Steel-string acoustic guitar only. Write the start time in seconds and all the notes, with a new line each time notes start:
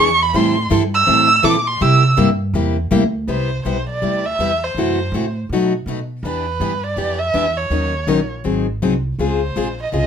0.34 E3 G3 C4 E4 A4
0.70 E3 G3 C4 E4 A4
1.07 E3 G3 C4 E4 A4
1.43 E3 G3 C4 E4 A4
1.80 C3 G3 A#3 E4 G4
2.17 C3 G3 A#3 E4 G4
2.54 C3 G3 A#3 E4 G4
2.91 C3 G3 A#3 E4 G4
3.28 C3 G3 B3 E4 G4
3.65 C3 G3 B3 E4 G4
4.02 C3 G3 B3 E4 G4
4.40 C3 G3 B3 E4 G4
4.77 C3 E3 A3 E4 F#4
5.14 C3 E3 A3 E4 F#4
5.53 B2 F#3 A3 D#4 F#4
5.87 B2 F#3 A3 D#4 F#4
6.25 E3 B3 D4 G4
6.61 E3 B3 D4 G4
6.97 E3 B3 D4 G4
7.34 E3 B3 D4 G4
7.71 D#3 F#3 C#4 D#4 A#4
8.07 D#3 F#3 C#4 D#4 A#4
8.44 D#3 F#3 C4 D#4 G#4
8.82 D#3 F#3 C4 D#4 G#4
9.19 C#3 G#3 C4 F4 G#4
9.56 C#3 G#3 C4 F4 G#4
9.92 C#3 G#3 C4 F4 G#4